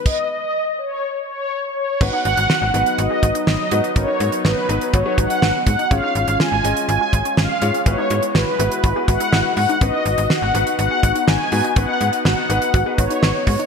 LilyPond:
<<
  \new Staff \with { instrumentName = "Analog polysynth" } { \time 4/4 \key gis \minor \tempo 4 = 123 dis''8 dis''4 cis''4 cis''4 cis''8 | \key b \major fis''8 fis''4 fis''8 dis''4 dis''4 | cis''4 b'4 cis''8 fis''4 fis''8 | eis''8 eis''8 gis''4 gis''4 eis''4 |
cis''4 b'4. fis''4 fis''8 | dis''8 dis''8 fis''4 fis''4 gis''4 | fis''4 fis''4. cis''4 cis''8 | }
  \new Staff \with { instrumentName = "Grand piano" } { \time 4/4 \key gis \minor r1 | \key b \major <b dis' fis' b'>4 r8 <b dis' fis' b'>4~ <b dis' fis' b'>16 r8. <b dis' fis' b'>16 r16 | <b dis' fis' ais'>4 r8 <b dis' fis' b'>8 r16 <b dis' fis' b'>4~ <b dis' fis' b'>16 r8 | <cis' eis' gis' cis''>4 r8 <cis' eis' gis' dis''>4~ <cis' eis' gis' dis''>16 r8. <cis' eis' gis' cis''>16 r16 |
<b e' fis' b'>4 r8 <b e' fis' b'>8 r16 <b e' fis' b'>4~ <b e' fis' b'>16 r8 | <b dis' fis' b'>4 r8 <b dis' fis' b'>4~ <b dis' fis' b'>16 r8. <b dis' fis' b'>16 r16 | <b dis' fis' b'>4 r8 <b dis' fis' b'>8 r16 <b dis' fis' b'>4~ <b dis' fis' b'>16 r8 | }
  \new Staff \with { instrumentName = "Synth arpeggio sound" } { \time 4/4 \key gis \minor r1 | \key b \major cis'16 dis'16 fis'8 fis'8 dis'8 fis'16 gis'16 fis'16 dis'16 dis'8 fis'16 dis'16 | cis'16 dis'16 fis'8 fis'8 dis'8 fis'16 gis'16 fis'16 dis'16 dis'8 fis'16 dis'16 | cis'16 dis'16 eis'8 eis'8 cis'8 eis'16 fis'16 eis'16 cis'16 cis'8 eis'16 cis'16 |
cis'16 dis'16 fis'8 fis'8 e'8 fis'16 gis'16 fis'16 e'16 e'8 fis'16 dis'16 | cis'16 dis'16 fis'8 fis'8 dis'8 fis'16 gis'16 fis'16 dis'16 dis'8 fis'16 dis'16 | cis'16 dis'16 fis'8 fis'8 dis'8 fis'16 gis'16 fis'16 dis'16 dis'8 fis'16 dis'16 | }
  \new Staff \with { instrumentName = "Analog synth pad" } { \time 4/4 \key gis \minor r1 | \key b \major <fis b dis'>1~ | <fis b dis'>1 | <gis cis' eis'>1 |
<e' fis' b'>1 | <b dis'>1~ | <b dis'>1 | }
  \new Staff \with { instrumentName = "FM bass" } { \clef bass \time 4/4 \key gis \minor r1 | \key b \major gis,,16 r16 gis,,16 gis,,16 r16 gis,,16 gis,,16 r16 gis,,16 r16 gis,,16 r16 gis,,16 r16 gis,16 r16 | gis,,16 r16 gis,16 r16 gis,,16 r16 gis,,16 r16 gis,,16 r16 gis,,16 r16 gis,,16 r16 gis,16 r16 | gis,,16 r16 gis,,16 gis,,16 r16 gis,,16 gis,,16 r16 gis,,16 r16 gis,,16 r16 gis,,16 r16 gis,16 r16 |
gis,,16 r16 gis,16 r16 gis,,16 r16 gis,,16 r16 gis,,16 r16 gis,,16 r16 gis,,16 r16 gis,16 r16 | gis,,16 r16 gis,,16 gis,,16 r16 gis,,16 gis,,16 r16 gis,,16 r16 gis,,16 r16 gis,,16 r16 gis,16 r16 | gis,,16 r16 gis,16 r16 gis,,16 r16 gis,,16 r16 gis,,16 r16 gis,,16 r16 gis,,16 r16 gis,16 r16 | }
  \new DrumStaff \with { instrumentName = "Drums" } \drummode { \time 4/4 <cymc bd>4 r4 r4 r4 | <cymc bd>8 hh16 hh16 sn8 hh16 hh16 hh8 <hh bd>16 hh16 sn8 hh16 hh16 | <hh bd>8 hh16 hh16 sn8 hh16 hh16 <hh bd>8 <hh bd>16 hh16 sn8 <hh bd>16 hh16 | <hh bd>8 hh16 hh16 sn8 hh16 hh16 hh8 <hh bd>16 hh16 sn8 hh16 hh16 |
<hh bd>8 hh16 hh16 sn8 hh16 hh16 <hh bd>8 <hh bd>16 hh16 sn8 hho16 hh16 | <hh bd>8 hh16 hh16 sn8 hh16 hh16 hh8 <hh bd>16 hh16 sn8 hho16 hh16 | <hh bd>8 hh16 hh16 sn8 hh16 hh16 <hh bd>8 <hh bd>16 hh16 sn8 <hho bd>16 hh16 | }
>>